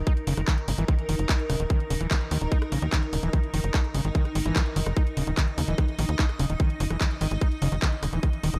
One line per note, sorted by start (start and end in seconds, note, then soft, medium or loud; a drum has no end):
0.00 8.59 D#4 medium
0.00 4.99 A#4 medium
0.07 0.13 D#4 medium
0.07 kick loud
0.07 closed hi-hat medium
0.17 closed hi-hat soft
0.27 0.34 F#1 medium
0.27 0.34 C#3 loud
0.27 open hi-hat loud
0.37 0.44 F#1 medium
0.37 0.41 D#3 medium
0.37 cross-stick medium
0.37 closed hi-hat medium
0.48 0.57 D#3 medium
0.48 kick loud
0.48 clap loud
0.48 closed hi-hat medium
0.58 closed hi-hat soft
0.68 0.75 G#1 medium
0.68 0.72 C#3 medium
0.68 open hi-hat medium
0.78 0.85 G#1 medium
0.78 0.85 E3 medium
0.78 closed hi-hat medium
0.88 0.95 D#3 medium
0.88 kick loud
0.88 cross-stick soft
0.88 closed hi-hat medium
0.99 closed hi-hat soft
1.09 1.16 F#1 medium
1.09 1.15 D#3 medium
1.09 open hi-hat loud
1.19 1.26 F#1 medium
1.19 closed hi-hat medium
1.29 1.36 D#4 medium
1.29 kick loud
1.29 clap loud
1.29 closed hi-hat medium
1.39 closed hi-hat soft
1.50 1.56 D#1 medium
1.50 1.56 C#3 loud
1.50 cross-stick medium
1.50 open hi-hat loud
1.60 1.67 D#1 medium
1.60 1.64 D#3 medium
1.60 closed hi-hat medium
1.70 1.80 D#3 medium
1.70 kick loud
1.70 closed hi-hat soft
1.80 closed hi-hat soft
1.90 1.97 D#1 medium
1.90 1.94 C#3 medium
1.90 open hi-hat loud
2.01 2.07 D#1 medium
2.01 2.07 E3 medium
2.01 cross-stick soft
2.01 closed hi-hat medium
2.11 2.17 D#3 medium
2.11 kick loud
2.11 clap loud
2.11 closed hi-hat medium
2.21 closed hi-hat soft
2.31 2.38 D#2 medium
2.31 2.38 D#3 medium
2.31 open hi-hat loud
2.41 2.48 D#1 medium
2.41 closed hi-hat medium
2.52 2.58 D#4 medium
2.52 kick loud
2.52 closed hi-hat soft
2.62 cross-stick medium
2.62 closed hi-hat soft
2.72 2.79 A#1 medium
2.72 2.79 C#3 loud
2.72 open hi-hat loud
2.82 2.89 D#2 medium
2.82 2.86 D#3 medium
2.82 closed hi-hat medium
2.92 3.02 D#3 medium
2.92 kick loud
2.92 clap loud
2.92 closed hi-hat medium
3.03 closed hi-hat soft
3.13 3.20 D#1 medium
3.13 3.17 C#3 medium
3.13 cross-stick soft
3.13 open hi-hat medium
3.23 3.30 D#1 medium
3.23 3.30 E3 medium
3.23 closed hi-hat medium
3.33 3.40 D#3 medium
3.33 kick loud
3.33 closed hi-hat soft
3.43 closed hi-hat soft
3.54 3.61 F#1 medium
3.54 3.60 D#3 medium
3.54 open hi-hat loud
3.64 3.71 F#1 medium
3.64 closed hi-hat medium
3.74 3.81 D#4 medium
3.74 kick loud
3.74 cross-stick medium
3.74 clap loud
3.74 closed hi-hat medium
3.84 closed hi-hat soft
3.94 4.01 G#1 medium
3.94 4.01 C#3 loud
3.94 open hi-hat loud
4.05 4.12 G#1 medium
4.05 4.09 D#3 medium
4.05 closed hi-hat medium
4.15 4.25 D#3 medium
4.15 kick loud
4.15 closed hi-hat soft
4.25 cross-stick soft
4.25 closed hi-hat soft
4.35 4.42 G#1 medium
4.35 4.39 D#3 medium
4.35 open hi-hat loud
4.46 4.52 G#1 medium
4.46 4.55 E3 medium
4.46 closed hi-hat medium
4.56 4.62 E3 medium
4.56 kick loud
4.56 clap loud
4.56 closed hi-hat soft
4.66 closed hi-hat soft
4.76 4.83 F#1 medium
4.76 4.80 D#3 loud
4.76 open hi-hat loud
4.86 4.93 F#1 medium
4.86 cross-stick medium
4.86 closed hi-hat medium
4.97 5.03 D#4 medium
4.97 8.59 D#5 medium
4.97 kick loud
4.97 closed hi-hat soft
5.07 closed hi-hat soft
5.17 5.24 D#1 medium
5.17 5.23 C#3 loud
5.17 cross-stick soft
5.17 open hi-hat loud
5.27 5.34 D#1 medium
5.27 5.31 D#3 medium
5.27 closed hi-hat soft
5.37 5.47 D#3 medium
5.37 kick loud
5.37 clap loud
5.37 closed hi-hat medium
5.48 closed hi-hat soft
5.58 5.65 D#2 medium
5.58 5.62 C#3 medium
5.58 open hi-hat loud
5.68 5.75 D#1 medium
5.68 5.75 E3 medium
5.68 closed hi-hat medium
5.78 5.85 D#3 medium
5.78 kick loud
5.78 cross-stick medium
5.78 closed hi-hat medium
5.88 closed hi-hat soft
5.99 6.05 A#1 medium
5.99 6.05 D#3 medium
5.99 open hi-hat loud
6.09 6.16 D#2 medium
6.09 closed hi-hat soft
6.19 6.26 D#4 medium
6.19 kick loud
6.19 clap loud
6.19 closed hi-hat soft
6.29 cross-stick soft
6.29 closed hi-hat soft
6.39 6.46 D#1 loud
6.39 6.46 C#3 loud
6.39 open hi-hat medium
6.50 6.56 D#1 medium
6.50 6.54 D#3 medium
6.50 closed hi-hat medium
6.60 6.70 D#3 medium
6.60 kick loud
6.60 closed hi-hat medium
6.70 closed hi-hat soft
6.80 6.87 F#1 medium
6.80 6.84 C#3 medium
6.80 open hi-hat loud
6.90 6.97 F#1 medium
6.90 6.97 E3 medium
6.90 cross-stick medium
6.90 closed hi-hat medium
7.01 7.07 D#3 medium
7.01 kick loud
7.01 clap loud
7.01 closed hi-hat medium
7.11 closed hi-hat soft
7.21 7.28 G#1 loud
7.21 7.28 D#3 medium
7.21 open hi-hat medium
7.31 7.38 G#1 medium
7.31 closed hi-hat medium
7.41 7.48 D#4 medium
7.41 kick loud
7.41 cross-stick soft
7.41 closed hi-hat medium
7.52 closed hi-hat soft
7.62 7.69 F#1 loud
7.62 7.68 C#3 loud
7.62 open hi-hat loud
7.72 7.79 F#1 medium
7.72 7.76 D#3 medium
7.72 closed hi-hat medium
7.82 7.92 D#3 medium
7.82 kick loud
7.82 clap loud
7.82 closed hi-hat medium
7.92 closed hi-hat soft
8.03 8.10 D#1 medium
8.03 8.07 C#3 medium
8.03 cross-stick medium
8.03 open hi-hat medium
8.13 8.20 D#1 medium
8.13 8.19 E3 medium
8.13 closed hi-hat medium
8.23 8.30 D#3 medium
8.23 kick loud
8.23 closed hi-hat medium
8.33 closed hi-hat soft
8.43 8.50 D#1 medium
8.43 8.50 D#3 medium
8.43 open hi-hat loud
8.54 8.59 D#1 medium
8.54 cross-stick soft
8.54 closed hi-hat medium